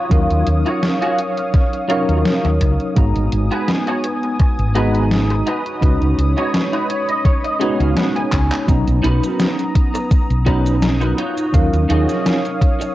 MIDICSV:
0, 0, Header, 1, 8, 480
1, 0, Start_track
1, 0, Key_signature, -6, "minor"
1, 0, Tempo, 714286
1, 75, Time_signature, 4, 2, 24, 8
1, 8701, End_track
2, 0, Start_track
2, 0, Title_t, "Analog synth pad"
2, 0, Program_c, 0, 89
2, 0, Note_on_c, 0, 73, 75
2, 0, Note_on_c, 0, 77, 66
2, 0, Note_on_c, 0, 87, 85
2, 1968, Note_off_c, 0, 87, 0
2, 1971, Note_off_c, 0, 73, 0
2, 1971, Note_off_c, 0, 77, 0
2, 1990, Note_on_c, 0, 59, 83
2, 1990, Note_on_c, 0, 80, 75
2, 1992, Note_on_c, 0, 87, 89
2, 3655, Note_off_c, 0, 80, 0
2, 3656, Note_off_c, 0, 59, 0
2, 3672, Note_on_c, 0, 83, 69
2, 3674, Note_on_c, 0, 73, 75
2, 5806, Note_off_c, 0, 87, 0
2, 5812, Note_off_c, 0, 83, 0
2, 5813, Note_off_c, 0, 73, 0
2, 5830, Note_on_c, 0, 82, 76
2, 5830, Note_on_c, 0, 87, 92
2, 5832, Note_on_c, 0, 59, 82
2, 7496, Note_off_c, 0, 82, 0
2, 7497, Note_off_c, 0, 59, 0
2, 7510, Note_on_c, 0, 73, 75
2, 7512, Note_on_c, 0, 77, 67
2, 8701, Note_off_c, 0, 73, 0
2, 8701, Note_off_c, 0, 77, 0
2, 8701, Note_off_c, 0, 87, 0
2, 8701, End_track
3, 0, Start_track
3, 0, Title_t, "Clean electric guitar"
3, 0, Program_c, 1, 27
3, 0, Note_on_c, 1, 65, 87
3, 0, Note_on_c, 1, 66, 80
3, 0, Note_on_c, 1, 73, 96
3, 313, Note_off_c, 1, 65, 0
3, 316, Note_off_c, 1, 66, 0
3, 318, Note_off_c, 1, 73, 0
3, 441, Note_on_c, 1, 65, 112
3, 445, Note_on_c, 1, 66, 100
3, 448, Note_on_c, 1, 73, 121
3, 554, Note_off_c, 1, 65, 0
3, 555, Note_off_c, 1, 66, 0
3, 557, Note_off_c, 1, 73, 0
3, 679, Note_on_c, 1, 65, 87
3, 682, Note_on_c, 1, 66, 83
3, 686, Note_on_c, 1, 68, 95
3, 793, Note_off_c, 1, 65, 0
3, 794, Note_off_c, 1, 66, 0
3, 796, Note_off_c, 1, 68, 0
3, 1268, Note_on_c, 1, 65, 113
3, 1273, Note_on_c, 1, 66, 103
3, 1276, Note_on_c, 1, 73, 123
3, 1456, Note_off_c, 1, 65, 0
3, 1459, Note_off_c, 1, 66, 0
3, 1460, Note_off_c, 1, 73, 0
3, 2358, Note_on_c, 1, 66, 117
3, 2363, Note_on_c, 1, 68, 104
3, 2366, Note_on_c, 1, 71, 122
3, 2472, Note_off_c, 1, 66, 0
3, 2474, Note_off_c, 1, 68, 0
3, 2476, Note_off_c, 1, 71, 0
3, 2600, Note_on_c, 1, 66, 87
3, 2603, Note_on_c, 1, 68, 84
3, 2607, Note_on_c, 1, 73, 100
3, 2713, Note_off_c, 1, 66, 0
3, 2714, Note_off_c, 1, 68, 0
3, 2717, Note_off_c, 1, 73, 0
3, 3190, Note_on_c, 1, 66, 110
3, 3194, Note_on_c, 1, 68, 104
3, 3197, Note_on_c, 1, 71, 119
3, 3377, Note_off_c, 1, 66, 0
3, 3379, Note_off_c, 1, 68, 0
3, 3380, Note_off_c, 1, 71, 0
3, 3672, Note_on_c, 1, 63, 88
3, 3676, Note_on_c, 1, 66, 82
3, 3679, Note_on_c, 1, 71, 100
3, 4153, Note_off_c, 1, 63, 0
3, 4155, Note_off_c, 1, 66, 0
3, 4157, Note_off_c, 1, 71, 0
3, 4280, Note_on_c, 1, 63, 112
3, 4283, Note_on_c, 1, 66, 104
3, 4287, Note_on_c, 1, 73, 117
3, 4393, Note_off_c, 1, 63, 0
3, 4395, Note_off_c, 1, 66, 0
3, 4396, Note_off_c, 1, 73, 0
3, 4519, Note_on_c, 1, 63, 85
3, 4522, Note_on_c, 1, 66, 78
3, 4525, Note_on_c, 1, 71, 99
3, 4629, Note_off_c, 1, 71, 0
3, 4632, Note_off_c, 1, 63, 0
3, 4632, Note_on_c, 1, 73, 75
3, 4634, Note_off_c, 1, 66, 0
3, 4753, Note_off_c, 1, 73, 0
3, 4765, Note_on_c, 1, 75, 59
3, 4866, Note_off_c, 1, 75, 0
3, 4872, Note_on_c, 1, 73, 78
3, 4993, Note_off_c, 1, 73, 0
3, 5002, Note_on_c, 1, 75, 73
3, 5108, Note_on_c, 1, 63, 115
3, 5112, Note_on_c, 1, 66, 106
3, 5116, Note_on_c, 1, 73, 123
3, 5226, Note_off_c, 1, 75, 0
3, 5242, Note_on_c, 1, 77, 70
3, 5296, Note_off_c, 1, 63, 0
3, 5298, Note_off_c, 1, 66, 0
3, 5300, Note_off_c, 1, 73, 0
3, 5346, Note_off_c, 1, 77, 0
3, 5353, Note_on_c, 1, 78, 74
3, 5474, Note_off_c, 1, 78, 0
3, 5482, Note_on_c, 1, 80, 70
3, 5809, Note_off_c, 1, 80, 0
3, 6065, Note_on_c, 1, 63, 115
3, 6070, Note_on_c, 1, 66, 99
3, 6071, Note_on_c, 1, 70, 107
3, 6074, Note_on_c, 1, 71, 127
3, 6375, Note_off_c, 1, 63, 0
3, 6376, Note_off_c, 1, 66, 0
3, 6377, Note_off_c, 1, 70, 0
3, 6379, Note_off_c, 1, 71, 0
3, 7027, Note_on_c, 1, 63, 113
3, 7029, Note_on_c, 1, 66, 98
3, 7034, Note_on_c, 1, 71, 120
3, 7035, Note_on_c, 1, 70, 95
3, 7215, Note_off_c, 1, 63, 0
3, 7217, Note_off_c, 1, 66, 0
3, 7218, Note_off_c, 1, 70, 0
3, 7219, Note_off_c, 1, 71, 0
3, 7395, Note_on_c, 1, 63, 87
3, 7399, Note_on_c, 1, 66, 85
3, 7403, Note_on_c, 1, 71, 96
3, 7404, Note_on_c, 1, 70, 66
3, 7503, Note_off_c, 1, 63, 0
3, 7507, Note_off_c, 1, 66, 0
3, 7510, Note_on_c, 1, 63, 93
3, 7514, Note_off_c, 1, 70, 0
3, 7514, Note_on_c, 1, 65, 76
3, 7515, Note_off_c, 1, 71, 0
3, 7515, Note_on_c, 1, 66, 82
3, 7518, Note_on_c, 1, 73, 105
3, 7904, Note_off_c, 1, 63, 0
3, 7904, Note_off_c, 1, 65, 0
3, 7906, Note_off_c, 1, 66, 0
3, 7907, Note_off_c, 1, 73, 0
3, 7989, Note_on_c, 1, 63, 115
3, 7994, Note_on_c, 1, 65, 94
3, 7996, Note_on_c, 1, 68, 127
3, 7997, Note_on_c, 1, 66, 92
3, 8297, Note_off_c, 1, 63, 0
3, 8298, Note_off_c, 1, 65, 0
3, 8299, Note_off_c, 1, 66, 0
3, 8300, Note_off_c, 1, 68, 0
3, 8701, End_track
4, 0, Start_track
4, 0, Title_t, "Tine electric piano"
4, 0, Program_c, 2, 4
4, 0, Control_c, 2, 64, 127
4, 61, Note_on_c, 2, 54, 80
4, 67, Note_on_c, 2, 61, 73
4, 70, Note_on_c, 2, 63, 71
4, 76, Note_on_c, 2, 77, 72
4, 80, Note_on_c, 2, 70, 83
4, 1241, Note_off_c, 2, 54, 0
4, 1244, Note_off_c, 2, 61, 0
4, 1246, Note_off_c, 2, 63, 0
4, 1249, Note_off_c, 2, 77, 0
4, 1251, Note_off_c, 2, 70, 0
4, 1265, Note_on_c, 2, 54, 93
4, 1271, Note_on_c, 2, 61, 84
4, 1276, Note_on_c, 2, 63, 82
4, 1281, Note_on_c, 2, 77, 88
4, 1286, Note_on_c, 2, 70, 100
4, 1963, Note_off_c, 2, 54, 0
4, 1966, Note_off_c, 2, 61, 0
4, 1969, Note_off_c, 2, 63, 0
4, 1971, Note_off_c, 2, 77, 0
4, 1973, Note_off_c, 2, 70, 0
4, 1982, Note_on_c, 2, 56, 77
4, 1987, Note_on_c, 2, 59, 76
4, 1993, Note_on_c, 2, 63, 75
4, 1997, Note_on_c, 2, 66, 73
4, 2003, Control_c, 2, 64, 0
4, 2003, Note_on_c, 2, 82, 92
4, 2136, Control_c, 2, 64, 127
4, 3162, Note_off_c, 2, 56, 0
4, 3164, Note_off_c, 2, 59, 0
4, 3167, Note_off_c, 2, 63, 0
4, 3169, Note_off_c, 2, 66, 0
4, 3172, Note_off_c, 2, 82, 0
4, 3189, Note_on_c, 2, 56, 95
4, 3190, Note_on_c, 2, 59, 87
4, 3194, Note_on_c, 2, 63, 83
4, 3195, Note_on_c, 2, 66, 88
4, 3199, Note_on_c, 2, 82, 104
4, 3658, Note_off_c, 2, 56, 0
4, 3659, Note_off_c, 2, 59, 0
4, 3661, Note_off_c, 2, 63, 0
4, 3662, Note_off_c, 2, 66, 0
4, 3663, Note_off_c, 2, 82, 0
4, 3683, Control_c, 2, 64, 0
4, 3794, Control_c, 2, 64, 127
4, 3905, Note_on_c, 2, 56, 77
4, 3910, Note_on_c, 2, 61, 73
4, 3914, Note_on_c, 2, 63, 73
4, 3920, Note_on_c, 2, 66, 73
4, 3925, Note_on_c, 2, 71, 90
4, 5083, Note_off_c, 2, 56, 0
4, 5086, Note_off_c, 2, 61, 0
4, 5088, Note_off_c, 2, 63, 0
4, 5091, Note_off_c, 2, 66, 0
4, 5093, Note_off_c, 2, 71, 0
4, 5104, Note_on_c, 2, 56, 97
4, 5108, Note_on_c, 2, 61, 89
4, 5114, Note_on_c, 2, 63, 84
4, 5118, Note_on_c, 2, 66, 89
4, 5124, Note_on_c, 2, 59, 102
4, 5803, Note_off_c, 2, 56, 0
4, 5805, Note_off_c, 2, 61, 0
4, 5808, Note_off_c, 2, 63, 0
4, 5810, Note_off_c, 2, 66, 0
4, 5813, Note_off_c, 2, 59, 0
4, 5825, Note_on_c, 2, 54, 80
4, 5832, Note_on_c, 2, 59, 75
4, 5837, Note_on_c, 2, 61, 73
4, 5840, Note_on_c, 2, 63, 72
4, 5844, Control_c, 2, 64, 0
4, 5846, Note_on_c, 2, 82, 86
4, 5959, Control_c, 2, 64, 127
4, 7003, Note_off_c, 2, 54, 0
4, 7007, Note_off_c, 2, 59, 0
4, 7009, Note_off_c, 2, 61, 0
4, 7011, Note_off_c, 2, 63, 0
4, 7014, Note_off_c, 2, 82, 0
4, 7029, Note_on_c, 2, 54, 93
4, 7031, Note_on_c, 2, 59, 88
4, 7034, Note_on_c, 2, 61, 89
4, 7037, Note_on_c, 2, 63, 91
4, 7039, Note_on_c, 2, 82, 106
4, 7499, Note_off_c, 2, 54, 0
4, 7500, Note_off_c, 2, 59, 0
4, 7501, Note_off_c, 2, 61, 0
4, 7502, Note_off_c, 2, 63, 0
4, 7503, Note_off_c, 2, 82, 0
4, 7525, Control_c, 2, 64, 0
4, 7632, Control_c, 2, 64, 127
4, 7745, Note_on_c, 2, 54, 81
4, 7751, Note_on_c, 2, 61, 73
4, 7755, Note_on_c, 2, 63, 74
4, 7760, Note_on_c, 2, 77, 75
4, 7765, Note_on_c, 2, 70, 92
4, 8701, Note_off_c, 2, 54, 0
4, 8701, Note_off_c, 2, 61, 0
4, 8701, Note_off_c, 2, 63, 0
4, 8701, Note_off_c, 2, 70, 0
4, 8701, Note_off_c, 2, 77, 0
4, 8701, End_track
5, 0, Start_track
5, 0, Title_t, "Fretless electric bass"
5, 0, Program_c, 3, 35
5, 75, Note_on_c, 3, 39, 102
5, 175, Note_off_c, 3, 39, 0
5, 204, Note_on_c, 3, 39, 86
5, 290, Note_off_c, 3, 39, 0
5, 315, Note_on_c, 3, 39, 82
5, 415, Note_off_c, 3, 39, 0
5, 1402, Note_on_c, 3, 39, 95
5, 1489, Note_off_c, 3, 39, 0
5, 1642, Note_on_c, 3, 39, 87
5, 1729, Note_off_c, 3, 39, 0
5, 1753, Note_on_c, 3, 37, 79
5, 1854, Note_off_c, 3, 37, 0
5, 1994, Note_on_c, 3, 32, 97
5, 2094, Note_off_c, 3, 32, 0
5, 2122, Note_on_c, 3, 32, 90
5, 2209, Note_off_c, 3, 32, 0
5, 2233, Note_on_c, 3, 32, 86
5, 2334, Note_off_c, 3, 32, 0
5, 3082, Note_on_c, 3, 32, 94
5, 3634, Note_off_c, 3, 32, 0
5, 3914, Note_on_c, 3, 37, 102
5, 4014, Note_off_c, 3, 37, 0
5, 4041, Note_on_c, 3, 37, 88
5, 4129, Note_off_c, 3, 37, 0
5, 4152, Note_on_c, 3, 37, 86
5, 4253, Note_off_c, 3, 37, 0
5, 5242, Note_on_c, 3, 37, 100
5, 5329, Note_off_c, 3, 37, 0
5, 5594, Note_on_c, 3, 37, 90
5, 5694, Note_off_c, 3, 37, 0
5, 5833, Note_on_c, 3, 35, 100
5, 5934, Note_off_c, 3, 35, 0
5, 5961, Note_on_c, 3, 35, 88
5, 6049, Note_off_c, 3, 35, 0
5, 6074, Note_on_c, 3, 35, 86
5, 6174, Note_off_c, 3, 35, 0
5, 6923, Note_on_c, 3, 35, 98
5, 7474, Note_off_c, 3, 35, 0
5, 7754, Note_on_c, 3, 39, 98
5, 7854, Note_off_c, 3, 39, 0
5, 7882, Note_on_c, 3, 39, 93
5, 7969, Note_off_c, 3, 39, 0
5, 7993, Note_on_c, 3, 39, 83
5, 8094, Note_off_c, 3, 39, 0
5, 8701, End_track
6, 0, Start_track
6, 0, Title_t, "Muted clean electric guitar strokes"
6, 920, Note_on_c, 9, 29, 31
6, 988, Note_off_c, 9, 29, 0
6, 1033, Note_on_c, 9, 29, 33
6, 1100, Note_off_c, 9, 29, 0
6, 1638, Note_on_c, 9, 29, 86
6, 1706, Note_off_c, 9, 29, 0
6, 1751, Note_on_c, 9, 29, 32
6, 1818, Note_off_c, 9, 29, 0
6, 2839, Note_on_c, 9, 29, 32
6, 2906, Note_off_c, 9, 29, 0
6, 2951, Note_on_c, 9, 29, 33
6, 3018, Note_off_c, 9, 29, 0
6, 3559, Note_on_c, 9, 29, 90
6, 3626, Note_off_c, 9, 29, 0
6, 4759, Note_on_c, 9, 29, 32
6, 4826, Note_off_c, 9, 29, 0
6, 4869, Note_on_c, 9, 29, 34
6, 4936, Note_off_c, 9, 29, 0
6, 5479, Note_on_c, 9, 29, 87
6, 5546, Note_off_c, 9, 29, 0
6, 5590, Note_on_c, 9, 29, 32
6, 5657, Note_off_c, 9, 29, 0
6, 6679, Note_on_c, 9, 29, 88
6, 6747, Note_off_c, 9, 29, 0
6, 6788, Note_on_c, 9, 29, 34
6, 6855, Note_off_c, 9, 29, 0
6, 8599, Note_on_c, 9, 29, 82
6, 8666, Note_off_c, 9, 29, 0
6, 8701, End_track
7, 0, Start_track
7, 0, Title_t, "Muted fretless electric bass strokes"
7, 2953, Note_on_c, 9, 29, 41
7, 3021, Note_off_c, 9, 29, 0
7, 6795, Note_on_c, 9, 29, 44
7, 6862, Note_off_c, 9, 29, 0
7, 8701, End_track
8, 0, Start_track
8, 0, Title_t, "Drums"
8, 75, Note_on_c, 9, 36, 114
8, 75, Note_on_c, 9, 42, 63
8, 142, Note_off_c, 9, 36, 0
8, 143, Note_off_c, 9, 42, 0
8, 205, Note_on_c, 9, 42, 38
8, 272, Note_off_c, 9, 42, 0
8, 313, Note_on_c, 9, 42, 84
8, 380, Note_off_c, 9, 42, 0
8, 443, Note_on_c, 9, 42, 37
8, 510, Note_off_c, 9, 42, 0
8, 556, Note_on_c, 9, 38, 114
8, 556, Note_on_c, 9, 42, 63
8, 624, Note_off_c, 9, 38, 0
8, 624, Note_off_c, 9, 42, 0
8, 686, Note_on_c, 9, 42, 38
8, 753, Note_off_c, 9, 42, 0
8, 796, Note_on_c, 9, 42, 85
8, 863, Note_off_c, 9, 42, 0
8, 923, Note_on_c, 9, 42, 38
8, 990, Note_off_c, 9, 42, 0
8, 1034, Note_on_c, 9, 36, 121
8, 1034, Note_on_c, 9, 38, 35
8, 1034, Note_on_c, 9, 42, 60
8, 1101, Note_off_c, 9, 36, 0
8, 1101, Note_off_c, 9, 38, 0
8, 1101, Note_off_c, 9, 42, 0
8, 1164, Note_on_c, 9, 42, 35
8, 1232, Note_off_c, 9, 42, 0
8, 1276, Note_on_c, 9, 42, 86
8, 1343, Note_off_c, 9, 42, 0
8, 1405, Note_on_c, 9, 42, 38
8, 1472, Note_off_c, 9, 42, 0
8, 1515, Note_on_c, 9, 38, 115
8, 1515, Note_on_c, 9, 42, 62
8, 1582, Note_off_c, 9, 38, 0
8, 1582, Note_off_c, 9, 42, 0
8, 1644, Note_on_c, 9, 42, 36
8, 1711, Note_off_c, 9, 42, 0
8, 1753, Note_on_c, 9, 42, 88
8, 1754, Note_on_c, 9, 36, 60
8, 1820, Note_off_c, 9, 42, 0
8, 1821, Note_off_c, 9, 36, 0
8, 1881, Note_on_c, 9, 42, 37
8, 1948, Note_off_c, 9, 42, 0
8, 1992, Note_on_c, 9, 42, 63
8, 1994, Note_on_c, 9, 36, 105
8, 2059, Note_off_c, 9, 42, 0
8, 2061, Note_off_c, 9, 36, 0
8, 2121, Note_on_c, 9, 42, 37
8, 2188, Note_off_c, 9, 42, 0
8, 2232, Note_on_c, 9, 42, 84
8, 2299, Note_off_c, 9, 42, 0
8, 2362, Note_on_c, 9, 42, 37
8, 2429, Note_off_c, 9, 42, 0
8, 2473, Note_on_c, 9, 38, 110
8, 2473, Note_on_c, 9, 42, 64
8, 2541, Note_off_c, 9, 38, 0
8, 2541, Note_off_c, 9, 42, 0
8, 2601, Note_on_c, 9, 42, 38
8, 2668, Note_off_c, 9, 42, 0
8, 2713, Note_on_c, 9, 42, 89
8, 2780, Note_off_c, 9, 42, 0
8, 2842, Note_on_c, 9, 42, 40
8, 2909, Note_off_c, 9, 42, 0
8, 2952, Note_on_c, 9, 42, 62
8, 2954, Note_on_c, 9, 36, 119
8, 3019, Note_off_c, 9, 42, 0
8, 3021, Note_off_c, 9, 36, 0
8, 3082, Note_on_c, 9, 42, 37
8, 3150, Note_off_c, 9, 42, 0
8, 3194, Note_on_c, 9, 42, 87
8, 3261, Note_off_c, 9, 42, 0
8, 3323, Note_on_c, 9, 42, 37
8, 3390, Note_off_c, 9, 42, 0
8, 3435, Note_on_c, 9, 38, 114
8, 3435, Note_on_c, 9, 42, 65
8, 3503, Note_off_c, 9, 38, 0
8, 3503, Note_off_c, 9, 42, 0
8, 3564, Note_on_c, 9, 42, 38
8, 3631, Note_off_c, 9, 42, 0
8, 3675, Note_on_c, 9, 42, 88
8, 3743, Note_off_c, 9, 42, 0
8, 3805, Note_on_c, 9, 42, 38
8, 3872, Note_off_c, 9, 42, 0
8, 3915, Note_on_c, 9, 36, 112
8, 3918, Note_on_c, 9, 42, 66
8, 3982, Note_off_c, 9, 36, 0
8, 3985, Note_off_c, 9, 42, 0
8, 4044, Note_on_c, 9, 42, 40
8, 4112, Note_off_c, 9, 42, 0
8, 4158, Note_on_c, 9, 42, 91
8, 4225, Note_off_c, 9, 42, 0
8, 4285, Note_on_c, 9, 42, 39
8, 4352, Note_off_c, 9, 42, 0
8, 4396, Note_on_c, 9, 38, 111
8, 4396, Note_on_c, 9, 42, 68
8, 4463, Note_off_c, 9, 38, 0
8, 4463, Note_off_c, 9, 42, 0
8, 4525, Note_on_c, 9, 42, 41
8, 4592, Note_off_c, 9, 42, 0
8, 4638, Note_on_c, 9, 42, 93
8, 4705, Note_off_c, 9, 42, 0
8, 4764, Note_on_c, 9, 42, 39
8, 4832, Note_off_c, 9, 42, 0
8, 4874, Note_on_c, 9, 36, 124
8, 4876, Note_on_c, 9, 38, 35
8, 4876, Note_on_c, 9, 42, 64
8, 4941, Note_off_c, 9, 36, 0
8, 4943, Note_off_c, 9, 38, 0
8, 4943, Note_off_c, 9, 42, 0
8, 5004, Note_on_c, 9, 42, 39
8, 5072, Note_off_c, 9, 42, 0
8, 5115, Note_on_c, 9, 42, 95
8, 5182, Note_off_c, 9, 42, 0
8, 5245, Note_on_c, 9, 42, 40
8, 5313, Note_off_c, 9, 42, 0
8, 5354, Note_on_c, 9, 38, 115
8, 5354, Note_on_c, 9, 42, 68
8, 5422, Note_off_c, 9, 38, 0
8, 5422, Note_off_c, 9, 42, 0
8, 5485, Note_on_c, 9, 42, 39
8, 5552, Note_off_c, 9, 42, 0
8, 5593, Note_on_c, 9, 39, 88
8, 5593, Note_on_c, 9, 42, 95
8, 5594, Note_on_c, 9, 36, 60
8, 5660, Note_off_c, 9, 39, 0
8, 5660, Note_off_c, 9, 42, 0
8, 5662, Note_off_c, 9, 36, 0
8, 5723, Note_on_c, 9, 39, 96
8, 5723, Note_on_c, 9, 42, 40
8, 5790, Note_off_c, 9, 39, 0
8, 5790, Note_off_c, 9, 42, 0
8, 5834, Note_on_c, 9, 36, 114
8, 5835, Note_on_c, 9, 42, 72
8, 5835, Note_on_c, 9, 69, 48
8, 5901, Note_off_c, 9, 36, 0
8, 5903, Note_off_c, 9, 42, 0
8, 5903, Note_off_c, 9, 69, 0
8, 5963, Note_on_c, 9, 42, 41
8, 5963, Note_on_c, 9, 69, 28
8, 6031, Note_off_c, 9, 42, 0
8, 6031, Note_off_c, 9, 69, 0
8, 6076, Note_on_c, 9, 42, 96
8, 6143, Note_off_c, 9, 42, 0
8, 6205, Note_on_c, 9, 42, 42
8, 6205, Note_on_c, 9, 69, 58
8, 6272, Note_off_c, 9, 42, 0
8, 6272, Note_off_c, 9, 69, 0
8, 6314, Note_on_c, 9, 38, 115
8, 6314, Note_on_c, 9, 42, 69
8, 6314, Note_on_c, 9, 69, 49
8, 6381, Note_off_c, 9, 38, 0
8, 6381, Note_off_c, 9, 42, 0
8, 6381, Note_off_c, 9, 69, 0
8, 6445, Note_on_c, 9, 42, 43
8, 6445, Note_on_c, 9, 69, 30
8, 6512, Note_off_c, 9, 42, 0
8, 6512, Note_off_c, 9, 69, 0
8, 6554, Note_on_c, 9, 36, 104
8, 6554, Note_on_c, 9, 42, 98
8, 6621, Note_off_c, 9, 36, 0
8, 6622, Note_off_c, 9, 42, 0
8, 6685, Note_on_c, 9, 42, 41
8, 6685, Note_on_c, 9, 69, 58
8, 6753, Note_off_c, 9, 42, 0
8, 6753, Note_off_c, 9, 69, 0
8, 6794, Note_on_c, 9, 36, 126
8, 6794, Note_on_c, 9, 42, 68
8, 6794, Note_on_c, 9, 69, 50
8, 6862, Note_off_c, 9, 36, 0
8, 6862, Note_off_c, 9, 42, 0
8, 6862, Note_off_c, 9, 69, 0
8, 6924, Note_on_c, 9, 42, 41
8, 6924, Note_on_c, 9, 69, 28
8, 6992, Note_off_c, 9, 42, 0
8, 6992, Note_off_c, 9, 69, 0
8, 7033, Note_on_c, 9, 42, 96
8, 7035, Note_on_c, 9, 36, 60
8, 7100, Note_off_c, 9, 42, 0
8, 7102, Note_off_c, 9, 36, 0
8, 7166, Note_on_c, 9, 42, 40
8, 7166, Note_on_c, 9, 69, 60
8, 7233, Note_off_c, 9, 42, 0
8, 7233, Note_off_c, 9, 69, 0
8, 7274, Note_on_c, 9, 38, 122
8, 7274, Note_on_c, 9, 42, 69
8, 7274, Note_on_c, 9, 69, 48
8, 7342, Note_off_c, 9, 38, 0
8, 7342, Note_off_c, 9, 42, 0
8, 7342, Note_off_c, 9, 69, 0
8, 7403, Note_on_c, 9, 42, 40
8, 7403, Note_on_c, 9, 69, 28
8, 7470, Note_off_c, 9, 42, 0
8, 7470, Note_off_c, 9, 69, 0
8, 7516, Note_on_c, 9, 42, 97
8, 7583, Note_off_c, 9, 42, 0
8, 7645, Note_on_c, 9, 42, 43
8, 7645, Note_on_c, 9, 69, 59
8, 7712, Note_off_c, 9, 42, 0
8, 7712, Note_off_c, 9, 69, 0
8, 7755, Note_on_c, 9, 36, 120
8, 7756, Note_on_c, 9, 42, 74
8, 7756, Note_on_c, 9, 69, 47
8, 7822, Note_off_c, 9, 36, 0
8, 7823, Note_off_c, 9, 42, 0
8, 7823, Note_off_c, 9, 69, 0
8, 7886, Note_on_c, 9, 42, 42
8, 7886, Note_on_c, 9, 69, 29
8, 7953, Note_off_c, 9, 42, 0
8, 7953, Note_off_c, 9, 69, 0
8, 7996, Note_on_c, 9, 42, 94
8, 8063, Note_off_c, 9, 42, 0
8, 8124, Note_on_c, 9, 38, 38
8, 8124, Note_on_c, 9, 42, 40
8, 8124, Note_on_c, 9, 69, 55
8, 8191, Note_off_c, 9, 38, 0
8, 8191, Note_off_c, 9, 42, 0
8, 8191, Note_off_c, 9, 69, 0
8, 8237, Note_on_c, 9, 38, 124
8, 8237, Note_on_c, 9, 42, 70
8, 8237, Note_on_c, 9, 69, 47
8, 8305, Note_off_c, 9, 38, 0
8, 8305, Note_off_c, 9, 42, 0
8, 8305, Note_off_c, 9, 69, 0
8, 8365, Note_on_c, 9, 42, 44
8, 8365, Note_on_c, 9, 69, 28
8, 8433, Note_off_c, 9, 42, 0
8, 8433, Note_off_c, 9, 69, 0
8, 8475, Note_on_c, 9, 36, 109
8, 8478, Note_on_c, 9, 42, 94
8, 8542, Note_off_c, 9, 36, 0
8, 8545, Note_off_c, 9, 42, 0
8, 8608, Note_on_c, 9, 42, 42
8, 8608, Note_on_c, 9, 69, 57
8, 8675, Note_off_c, 9, 42, 0
8, 8675, Note_off_c, 9, 69, 0
8, 8701, End_track
0, 0, End_of_file